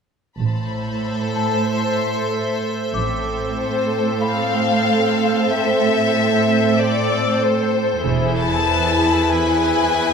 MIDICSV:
0, 0, Header, 1, 8, 480
1, 0, Start_track
1, 0, Key_signature, 0, "minor"
1, 0, Tempo, 638298
1, 301, Time_signature, 4, 2, 24, 8
1, 7619, End_track
2, 0, Start_track
2, 0, Title_t, "Celesta"
2, 0, Program_c, 0, 8
2, 455, Control_c, 0, 64, 127
2, 1019, Note_on_c, 0, 81, 33
2, 2190, Note_off_c, 0, 81, 0
2, 2211, Note_on_c, 0, 86, 30
2, 2233, Control_c, 0, 64, 0
2, 2370, Control_c, 0, 64, 127
2, 3167, Note_on_c, 0, 83, 26
2, 3626, Note_off_c, 0, 86, 0
2, 4584, Note_off_c, 0, 83, 0
2, 5359, Note_on_c, 0, 88, 29
2, 6077, Control_c, 0, 64, 0
2, 6194, Control_c, 0, 64, 127
2, 6760, Note_off_c, 0, 88, 0
2, 7619, End_track
3, 0, Start_track
3, 0, Title_t, "Violin section"
3, 0, Program_c, 1, 48
3, 297, Note_on_c, 1, 81, 21
3, 300, Note_on_c, 1, 83, 19
3, 1180, Note_off_c, 1, 83, 0
3, 1180, Note_on_c, 1, 84, 19
3, 1261, Note_off_c, 1, 84, 0
3, 1261, Note_on_c, 1, 84, 34
3, 1949, Note_off_c, 1, 81, 0
3, 1951, Note_off_c, 1, 84, 0
3, 7619, End_track
4, 0, Start_track
4, 0, Title_t, "Violin section"
4, 0, Program_c, 2, 48
4, 306, Note_on_c, 2, 72, 29
4, 2043, Note_off_c, 2, 72, 0
4, 2694, Note_on_c, 2, 72, 39
4, 3147, Note_off_c, 2, 72, 0
4, 3187, Note_on_c, 2, 77, 49
4, 4143, Note_on_c, 2, 76, 44
4, 4144, Note_off_c, 2, 77, 0
4, 5102, Note_off_c, 2, 76, 0
4, 5105, Note_on_c, 2, 74, 50
4, 5583, Note_off_c, 2, 74, 0
4, 5587, Note_on_c, 2, 72, 43
4, 6064, Note_off_c, 2, 72, 0
4, 6304, Note_on_c, 2, 81, 55
4, 6992, Note_off_c, 2, 81, 0
4, 7022, Note_on_c, 2, 80, 51
4, 7619, Note_off_c, 2, 80, 0
4, 7619, End_track
5, 0, Start_track
5, 0, Title_t, "Ambient pad"
5, 0, Program_c, 3, 92
5, 303, Note_on_c, 3, 72, 37
5, 303, Note_on_c, 3, 76, 38
5, 306, Note_on_c, 3, 69, 38
5, 2192, Note_off_c, 3, 72, 0
5, 2192, Note_off_c, 3, 76, 0
5, 2193, Note_off_c, 3, 69, 0
5, 2216, Note_on_c, 3, 69, 44
5, 2220, Note_on_c, 3, 72, 43
5, 6028, Note_off_c, 3, 69, 0
5, 6030, Note_off_c, 3, 72, 0
5, 6063, Note_on_c, 3, 71, 45
5, 6063, Note_on_c, 3, 76, 48
5, 6065, Note_on_c, 3, 64, 46
5, 7619, Note_off_c, 3, 64, 0
5, 7619, Note_off_c, 3, 71, 0
5, 7619, Note_off_c, 3, 76, 0
5, 7619, End_track
6, 0, Start_track
6, 0, Title_t, "Violin section"
6, 0, Program_c, 4, 48
6, 2218, Note_on_c, 4, 60, 30
6, 2222, Note_on_c, 4, 69, 29
6, 6029, Note_off_c, 4, 60, 0
6, 6031, Note_off_c, 4, 69, 0
6, 6060, Note_on_c, 4, 64, 38
6, 6062, Note_on_c, 4, 68, 38
6, 7619, Note_off_c, 4, 64, 0
6, 7619, Note_off_c, 4, 68, 0
6, 7619, End_track
7, 0, Start_track
7, 0, Title_t, "Cello section"
7, 0, Program_c, 5, 48
7, 300, Note_on_c, 5, 45, 23
7, 2040, Note_off_c, 5, 45, 0
7, 2225, Note_on_c, 5, 45, 35
7, 6033, Note_off_c, 5, 45, 0
7, 6060, Note_on_c, 5, 40, 41
7, 7619, Note_off_c, 5, 40, 0
7, 7619, End_track
8, 0, Start_track
8, 0, Title_t, "Double bass section"
8, 0, Program_c, 6, 48
8, 300, Note_on_c, 6, 33, 25
8, 750, Note_off_c, 6, 33, 0
8, 2218, Note_on_c, 6, 33, 31
8, 2669, Note_off_c, 6, 33, 0
8, 6064, Note_on_c, 6, 28, 38
8, 6512, Note_off_c, 6, 28, 0
8, 7619, End_track
0, 0, End_of_file